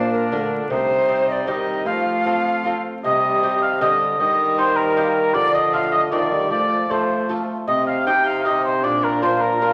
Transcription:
Already playing: A#2 A#3 D4 F4 A#4 C5
0.13 A#4
0.32 D3 A3 D4 F4 A#4
0.69 C3 G3 D#4 C5
1.08 C4 D#4 G4
1.28 D5 D#5
1.47 D#3 G3 C4 D#4 G4 D#5
1.86 F3 A3 F4 F5
2.26 C4 F4 A4
2.65 C4 F4 A4
3.04 C3 G3 D#5
3.43 C4 D#4 G4
3.62 F5
3.81 D3 G3 C4 G4 D#5
4.20 D#3 G3 D#5
4.58 A#3 D#4 G4 C5
4.77 A#4
4.97 A#3 D#4 G4
5.34 D3 F3 D5
5.54 D#5
5.73 A3 F4 A4 F5
5.92 D#5
6.11 D#3 F3 A3 F4 A4 D5 D#5
6.16 D5
6.32 G3
6.50 F3 A3 D5
6.90 A3 F4 A4 C5
7.29 A3 F4 A4
7.67 C3 C4 D#5
7.87 F5
8.07 C4 D#4 G4 G5
8.25 F5
8.45 C4 D#4 G4 D#5
8.64 C5
8.83 A#2 D4 D5
9.03 A#4
9.22 D4 F4 A#4 C5 D5
9.26 C5
9.41 A#4
9.61 D4 F4 A#4

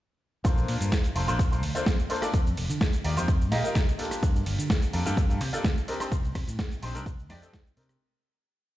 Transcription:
0.44 A#1 A#3 D4 F4 A4 C5, kick, closed hi-hat, ride, shaker
0.58 shaker
0.68 A#2, open hi-hat, ride
0.81 G2, closed hi-hat, shaker
0.92 kick, snare, ride, shaker
1.04 closed hi-hat, shaker
1.15 F1 A#3 D4 F4 A4 C5, open hi-hat, ride
1.27 A#1 A#3 D4 F4 A4 C5, closed hi-hat, shaker
1.39 kick, closed hi-hat, ride, shaker
1.51 A#3 D4 F4 A4 C5, shaker
1.63 D2, open hi-hat, ride
1.75 A#3 D4 F4 A4 C5, closed hi-hat, shaker
1.86 F2, kick, snare, closed hi-hat, shaker
1.99 shaker
2.10 A#3 D4 F4 A4 C5, open hi-hat, ride
2.16 closed hi-hat
2.22 A#3 D4 F4 A4 D5, cross-stick, closed hi-hat, shaker
2.34 F2, kick, closed hi-hat, ride, shaker
2.47 shaker
2.57 F1, open hi-hat, ride
2.70 D3, closed hi-hat, shaker
2.81 kick, snare, ride, shaker
2.93 closed hi-hat, shaker
3.04 D#2 A#3 D#4 F4 G4 D5, open hi-hat, ride
3.16 F2 A#3 D#4 F4 G4 C5, closed hi-hat, shaker
3.28 kick, closed hi-hat, ride, shaker
3.41 shaker
3.51 A#2 A#3 D#4 F4 G4 D#5, snare, open hi-hat, ride
3.64 A#3 D#4 F4 G4 A#4, muted fingered electric bass stroke, closed hi-hat, shaker
3.75 C2, kick, snare, closed hi-hat, ride, shaker
3.89 shaker
3.98 A#3 D4 F4 G4 A4, open hi-hat, ride
4.05 closed hi-hat
4.11 cross-stick, closed hi-hat, shaker
4.23 G2, kick, closed hi-hat, ride, shaker
4.36 shaker
4.46 G1, open hi-hat, ride
4.59 D3, closed hi-hat, shaker
4.70 kick, snare, ride, shaker
4.82 closed hi-hat, shaker
4.93 F2 A#3 D4 F4 G4 A4, open hi-hat, ride
5.06 G2 A#3 D4 F4 G4 A4, closed hi-hat, shaker
5.17 kick, closed hi-hat, ride, shaker
5.29 A#3 D4 F4 G4 A4, shaker
5.41 C3, open hi-hat, ride
5.53 A#3 D4 F4 G4 A4, muted fingered electric bass stroke, closed hi-hat, shaker
5.64 D2, kick, snare, closed hi-hat, ride, shaker
5.78 shaker
5.88 C4 D4 D#4 G4 A#4, open hi-hat, ride
5.94 closed hi-hat
6.00 C4 D4 D#4 G4 C5, cross-stick, closed hi-hat, shaker
6.12 C2, kick, closed hi-hat, ride, shaker
6.25 shaker
6.35 C3, kick, cross-stick, open hi-hat, ride
6.48 A2, closed hi-hat, shaker
6.59 kick, snare, ride, shaker
6.71 closed hi-hat, shaker
6.82 A#1 C4 D4 D#4 G4 C5, open hi-hat, ride
6.94 C2 C4 D4 D#4 G4 A#4, closed hi-hat, shaker
7.06 kick, closed hi-hat, ride, shaker
7.19 shaker
7.29 F2 C4 D4 D#4 G4 D5, snare, open hi-hat, ride
7.42 C4 D4 D#4 G4 A4, closed hi-hat, shaker
7.53 kick, snare, closed hi-hat, ride, shaker
7.67 shaker
7.76 C3 C4 D4 D#4 G4 A#4, open hi-hat, ride
7.83 closed hi-hat
7.89 cross-stick, closed hi-hat, shaker

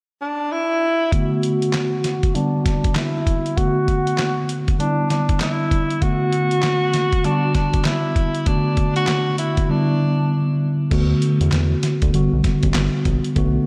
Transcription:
0.21 D4
0.52 E4
1.12 D3 A3 B3 F#4, kick, closed hi-hat
1.43 closed hi-hat
1.62 closed hi-hat
1.73 snare, clap, closed hi-hat
2.04 snare, closed hi-hat
2.23 kick, closed hi-hat
2.35 D3 G3 B3 D4 F#4, closed hi-hat
2.66 D4, kick, snare, closed hi-hat
2.84 kick, closed hi-hat
2.96 E4, snare, clap, closed hi-hat
3.27 kick, closed hi-hat
3.46 closed hi-hat
3.57 D3 A3 B3 F#4, kick, closed hi-hat
3.88 kick, closed hi-hat
4.07 closed hi-hat
4.18 snare, clap, closed hi-hat
4.49 closed hi-hat
4.68 kick, closed hi-hat
4.79 D3 G3 B3 D4 E4, closed hi-hat
5.10 D4, snare, closed hi-hat
5.29 kick, closed hi-hat
5.40 E4, snare, clap, closed hi-hat
5.71 kick, closed hi-hat
5.90 closed hi-hat
6.02 D3 A3 B3 F#4, kick, closed hi-hat
6.33 closed hi-hat
6.51 closed hi-hat
6.63 snare, clap, closed hi-hat
6.94 snare, closed hi-hat
7.12 kick, closed hi-hat
7.24 D3 G3 B3 D4 F#4, closed hi-hat
7.55 D4, kick, snare, closed hi-hat
7.73 kick, closed hi-hat
7.85 E4, snare, clap, closed hi-hat
8.16 kick, closed hi-hat
8.35 closed hi-hat
8.46 D3 A3 B3 D4 F#4, kick, closed hi-hat
8.77 kick, closed hi-hat
8.96 F#4, closed hi-hat
9.07 snare, clap, closed hi-hat
9.38 E4, closed hi-hat
9.57 kick, closed hi-hat
9.64 E4
9.69 D3 G3 B3 D4 E4
10.91 D2 D3 A3 B3 F#4, kick, closed hi-hat, crash
11.22 closed hi-hat
11.41 E2, closed hi-hat
11.52 E2, snare, clap, closed hi-hat
11.83 snare, closed hi-hat
12.02 D2, kick, closed hi-hat
12.13 G1 D3 G3 B3 F#4, closed hi-hat
12.33 B1
12.44 kick, snare, closed hi-hat
12.63 A1, kick, closed hi-hat
12.74 G1, snare, clap, closed hi-hat
13.05 A#1, kick, closed hi-hat
13.24 closed hi-hat
13.36 B1 D3 A3 B3 F#4, kick, closed hi-hat

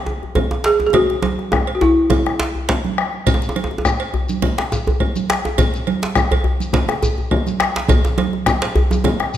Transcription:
0.06 djembe tone, high conga
0.23 djembe bass
0.35 bombo low, cowbell, high conga, djembe bass
0.51 djembe tone
0.64 G#4, djembe slap
0.80 djembe tone, high conga
0.87 G#4
0.93 F#4, bombo low, cowbell, djembe tone, low conga, djembe bass
1.09 bombo rim, djembe slap, high conga
1.22 cowbell, high conga, djembe tone
1.39 bombo rim, djembe slap, djembe tone
1.52 bombo rim, bombo low, djembe tone
1.67 cowbell, high conga
1.75 F#4
1.81 E4, bombo rim, high conga, djembe tone, djembe bass
2.10 bombo low, cowbell, djembe tone, high conga, low conga
2.26 bombo rim, djembe slap, djembe tone, high conga
2.40 djembe slap
2.55 djembe bass
2.69 bombo rim, bombo low, cowbell, djembe slap
2.84 djembe tone, high conga
2.98 bombo rim, high conga
3.13 high conga
3.27 bombo low, cowbell, djembe tone, high conga, djembe bass, low conga, shekere
3.34 djembe tone
3.42 djembe slap, shekere
3.49 djembe tone
3.55 cowbell, djembe slap, high conga
3.64 djembe tone
3.71 djembe slap, djembe tone
3.78 djembe tone
3.85 bombo rim, bombo low, shekere
4.00 cowbell, djembe slap
4.14 bombo rim, djembe tone, djembe bass
4.29 high conga, shekere
4.42 bombo low, cowbell, low conga
4.58 bombo rim, djembe slap, djembe tone
4.71 high conga, djembe tone, shekere
4.87 djembe bass
5.00 bombo low, cowbell, high conga
5.16 high conga, djembe tone, shekere
5.30 bombo rim, djembe slap
5.45 high conga, djembe tone
5.58 bombo low, cowbell, djembe tone, high conga, djembe bass, low conga, shekere
5.74 djembe slap, shekere
5.87 cowbell, djembe slap, high conga
6.02 djembe slap, djembe tone
6.15 bombo rim, bombo low, djembe tone, shekere
6.31 cowbell, djembe bass
6.44 bombo rim, djembe tone, djembe bass
6.60 high conga, shekere
6.73 bombo low, cowbell, djembe slap, low conga
6.89 bombo rim, djembe slap, djembe tone
7.02 high conga, djembe bass, shekere
7.18 djembe bass
7.31 bombo low, cowbell, high conga
7.46 high conga, djembe tone, shekere
7.60 bombo rim, djembe slap
7.75 djembe slap, high conga
7.88 bombo low, cowbell, high conga, djembe tone, low conga, djembe bass, shekere
8.05 djembe slap, djembe tone, shekere
8.18 cowbell, high conga, djembe tone
8.33 djembe slap, djembe tone
8.46 bombo rim, bombo low, djembe slap, shekere
8.62 cowbell, djembe slap
8.75 bombo rim, djembe tone, djembe bass
8.91 high conga, djembe tone, shekere
9.04 bombo low, cowbell, djembe tone, low conga
9.20 bombo rim, djembe slap, djembe tone
9.33 high conga, shekere

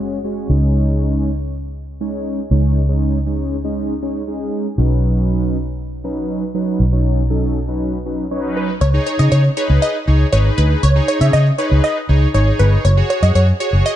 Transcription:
Already playing: F#1
0.00 G#3 C#4 F#4 C#5
0.24 G#3 C#4 F#4 C#5
0.49 C#2 G#3 C#4 D#4 C#5
2.01 G#3 C#4 D#4 C#5
2.51 C#2 G#3 C#4 D#4 C#5
2.89 G#3 C#4 D#4 C#5
3.26 G#3 C#4 D#4 C#5
3.64 G#3 C#4 D#4 D#5
4.02 G#3 C#4 D#4 C#5
4.27 G#3 C#4 D#4 G#4
4.78 B1 F#3 C#4 D#4 B4
6.04 F#3 C#4 D#4 B4
6.54 F#3 C#4 D#4 B4
6.80 B1
6.92 F#3 C#4 D#4 C#5
7.30 F#3 C#4 D#4 A4
7.68 F#3 C#4 D#4 B4
8.06 F#3 C#4 D#4 B4
8.31 F#3 C#4 D#4 B4 C#5
8.57 B4
8.81 C#2 C#5
8.94 D#4 G#4 C#5
9.06 C#5
9.19 C#3 D#5
9.32 C#3 C#5
9.57 D#4 G#4 B4 C#5
9.70 C#2
9.82 D#5
10.07 C#2 D#4 G#4 C#5
10.32 G#1 D#4 G#4 B4 C#5
10.58 D2 B4
10.83 C#2 C#5
10.96 D#4 G#4 C#5
11.08 C#5
11.21 C#3 E5
11.33 C#3 D#5
11.58 D#4 G#4 B4 C#5
11.71 C#2
11.84 D#5
12.09 C#2 D#4 G#4 C#5
12.34 G#1 D#4 G#4 C#5
12.59 G1 B4
12.85 F#1 C#5
12.97 F#4 G#4 C#5
13.10 C#5
13.22 F#2 D#5
13.35 F#2 C#5
13.60 F#4 G#4 C#5
13.73 F#1
13.86 D#5

